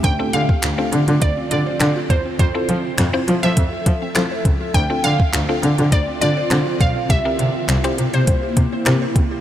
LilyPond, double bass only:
\new Staff \with { instrumentName = "Double bass" } { \clef bass \time 4/4 \key d \minor \tempo 4 = 102 d,8 d8 d,8 d16 d16 d,8 d8 d8 e,8 | f,8 f8 f,8 f16 f16 f,8 f8 f8 cis,8 | d,8 d8 d,8 d16 d16 d,8 d8 d8 b,,8 | c,8 c8 c,8 c16 c16 c,8 c8 c8 cis,8 | }